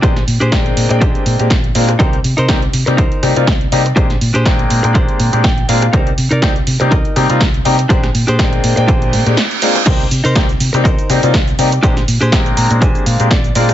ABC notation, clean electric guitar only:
X:1
M:4/4
L:1/16
Q:"Swing 16ths" 1/4=122
K:Bbmix
V:1 name="Clean electric guitar"
[DGAc]2 z [DGAc]2 z3 [DGAc]2 z6 | [EBc]2 z [EBc]2 z3 [EBc]2 z6 | [DGAc]2 z [DGAc]2 z3 [DGAc]2 z2 g2 f2 | [EBc]2 z [EBd]2 z3 [EBe]2 z6 |
[DGAc]2 z [DGAc]2 z3 [DGAc]2 z6 | [EBc]2 z [EBc]2 z3 [EBc]2 z6 | [DGAc]2 z [DGAc]2 z b2 [DGAca]2 f2 d2 d2 |]